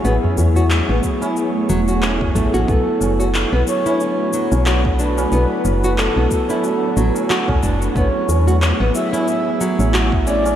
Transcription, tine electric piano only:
X:1
M:4/4
L:1/8
Q:"Swing 16ths" 1/4=91
K:Bdor
V:1 name="Tine electric piano"
[F,B,EG]3 [F,B,EG]4 [F,B,EG] | [F,B,EA]3 [F,B,EA]2 [F,B,EA]3 | [F,B,EA]3 [F,B,EA]4- [F,B,EA] | [F,B,EG]3 [F,B,EG]2 [F,B,EG]3 |]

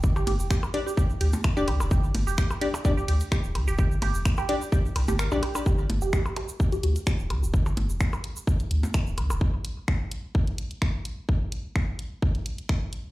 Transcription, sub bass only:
X:1
M:4/4
L:1/16
Q:"Swing 16ths" 1/4=128
K:Cdor
V:1 name="Sub bass" clef=bass
G,,,2 G,,, F,,, z6 D,, z2 D,,, D,, D,,, | G,,,2 G,,, F,,, z6 D,, z2 D,,, D,, D,,, | G,,,2 G,,, F,,, z6 C,, G,,,2 B,,, z2 | G,,,2 G,,, F,,, z6 D,, z2 D,,, D,, D,,, |
G,,,2 G,,, F,,, z6 D,, z2 D,,, D,, D,,, | z16 | z16 |]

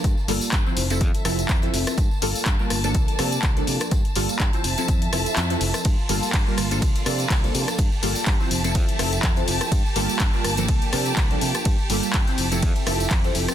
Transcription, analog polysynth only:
X:1
M:4/4
L:1/16
Q:"Swing 16ths" 1/4=124
K:Gdor
V:1 name="Analog polysynth"
z2 [G,B,FA]2 z [F,CEc]2 [F,CEA]3 [F,CEA]3 [F,CEA]3 | z2 [G,B,FA]2 z [G,B,FB]2 [F,B,DA]3 [F,B,DA]3 [F,B,DA]3 | z2 [G,B,FA]2 z [F,CEc]2 [F,CEA]3 [F,CEA]3 [F,CEA]3 | z2 [G,B,FA]2 z [G,B,FB]2 [F,B,DA]3 [F,B,DA]3 [F,B,DA]3 |
z2 [G,B,FA]2 z [F,CEc]2 [F,CEA]3 [F,CEA]3 [F,CEA]3 | z2 [G,B,FA]2 z [G,B,FB]2 [F,B,DA]3 [F,B,DA]3 [F,B,DA]3 | z2 [G,B,FA]2 z [F,CEc]2 [F,CEA]3 [F,CEA]3 [F,CEA]3 |]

